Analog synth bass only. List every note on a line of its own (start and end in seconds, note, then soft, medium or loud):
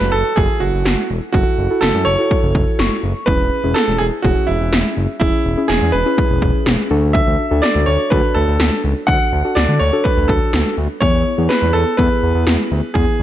0.01 0.11 F#1 loud
0.13 0.23 F#1 medium
0.37 0.48 F#1 loud
0.61 0.72 F#1 medium
0.73 0.84 F#1 loud
0.85 0.96 F#1 loud
1.10 1.20 E1 medium
1.34 1.44 F#1 loud
1.58 1.68 F#1 loud
1.82 1.93 F#1 medium
1.94 2.05 F#2 loud
2.06 2.17 F#1 medium
2.43 2.53 F#1 medium
2.55 2.65 F#1 medium
2.79 2.89 F#1 loud
3.03 3.14 F#1 loud
3.27 3.38 E1 loud
3.40 3.50 E1 medium
3.64 3.74 E1 loud
3.88 3.98 E1 medium
4.00 4.10 E1 medium
4.25 4.35 E1 loud
4.48 4.59 E1 medium
4.61 4.71 E1 medium
4.73 4.83 E1 loud
4.97 5.07 F#1 medium
5.21 5.31 E1 loud
5.45 5.56 E1 loud
5.70 5.80 E1 medium
5.82 5.92 E2 medium
5.94 6.04 E1 medium
6.30 6.40 E1 loud
6.42 6.52 E1 medium
6.66 6.77 E1 medium
6.91 7.21 D2 loud
7.27 7.37 D2 medium
7.51 7.61 D2 medium
7.75 7.85 D2 loud
7.87 7.98 D2 medium
8.12 8.22 D2 loud
8.36 8.46 D2 medium
8.48 8.58 D2 loud
8.60 8.70 D2 loud
8.84 8.94 C#2 medium
9.08 9.18 D2 loud
9.32 9.43 D2 loud
9.56 9.67 D2 medium
9.69 9.79 D3 loud
9.81 9.91 D2 medium
10.17 10.27 D2 medium
10.29 10.39 D2 medium
10.53 10.64 D2 medium
10.77 10.88 D2 loud
11.02 11.12 E2 loud
11.14 11.24 E2 medium
11.38 11.48 E2 loud
11.62 11.72 E2 loud
11.74 11.85 E2 loud
11.99 12.09 E2 loud
12.23 12.33 E2 medium
12.35 12.45 E2 loud
12.47 12.57 E2 loud
12.71 12.81 D2 medium
12.95 13.06 E2 loud
13.19 13.23 E2 medium